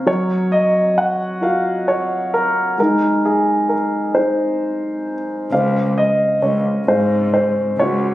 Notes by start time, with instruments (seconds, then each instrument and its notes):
0.06 grand piano F#3 A#4 C#5
0.52 grand piano D#5
0.98 grand piano F#5
1.41 grand piano F4 F#4 A#4 F5
1.88 grand piano C#5
2.34 grand piano A#4
2.78 grand piano G#3 D#4 A#4
3.25 grand piano G#4
3.69 grand piano A#4
4.15 grand piano D#4 G#4 C5
5.52 cello C#2, grand piano C#3 C5 F5
5.98 grand piano D#5
6.42 cello C#2, grand piano C#5
6.87 cello G#2, grand piano G#3 C#4 C5 F5
7.34 grand piano C5
7.78 cello C#2, grand piano F#4 C#5